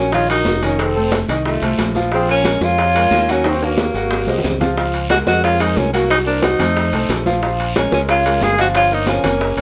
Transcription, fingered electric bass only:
Already playing: A#1
0.45 F1
1.28 C2
1.62 C2
1.78 A#1
2.61 F2
3.11 D#2
3.94 G#1
4.27 C2
4.44 C#2
5.27 F2
5.77 C2
6.60 F2
6.93 C2
7.09 A#1
7.92 C#2
8.41 G1
9.24 F#1
9.57 F#1

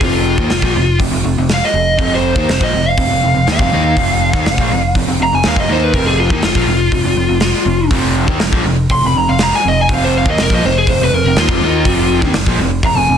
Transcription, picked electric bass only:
0.01 F1
0.38 D#2
0.50 F1
0.63 A#1
0.75 F1
1.00 F1
1.13 F1
1.24 F1
1.37 F1
1.74 F1
1.99 F1
2.36 D#2
2.49 F1
2.61 A#1
2.74 F1
2.98 F1
3.12 F1
3.24 F1
3.36 F1
3.48 D#2
3.60 F1
3.73 D#2
3.97 F1
4.34 D#2
4.46 F1
4.58 A#1
4.71 F1
4.96 F1
5.09 F1
5.21 F1
5.33 F1
5.46 D#2
5.56 F1
5.70 D#2
5.93 F1
6.30 D#2
6.42 F1
6.55 A#1
6.66 F1
6.92 F1
7.03 F1
7.16 F1
7.29 F1
7.66 F1
7.91 F1
8.28 D#2
8.41 F1
8.52 A#1
8.66 F1
8.91 F1
9.05 F1
9.16 F1
9.30 F1
9.65 F1
9.90 F1
10.26 D#2
10.39 F1
10.50 A#1
10.65 F1
11.02 F1
11.12 F1
11.24 F1
11.37 D#2
11.49 F1
11.60 D#2
11.86 F1
12.22 D#2
12.34 F1
12.47 A#1
12.58 F1
12.83 F1
12.95 F1
13.09 F1

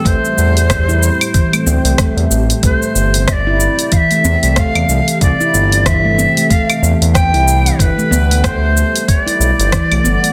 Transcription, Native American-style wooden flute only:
0.06 C5
2.64 C5
3.28 E5
3.32 D5
3.92 E5 F5
4.58 F5
5.22 D5
5.86 E5
6.50 F5
7.14 G5
7.79 B4
8.44 C5
9.08 C#5
9.22 D5

